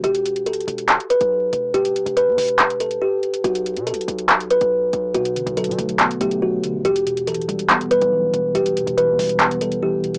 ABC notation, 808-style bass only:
X:1
M:4/4
L:1/16
Q:1/4=141
K:Em
V:1 name="808-style bass" clef=bass
E,,,4 D,,,2 E,,,3 z2 B,,,3 E,,,2 | E,,,2 D,,, E,,,2 E,, E,,,6 z4 | B,,,3 B,,3/2 B,,,3/2 B,,,4- B,,, B,,,3 B,,,2 | B,,,2 A,,, B,,,2 B,, B,,,2 z2 B,,,6 |
E,,,4 D,,,2 E,,,3 z2 B,,,3 E,,,2 | E,,,2 D,,, E,,,2 E,, E,,,6 z4 |]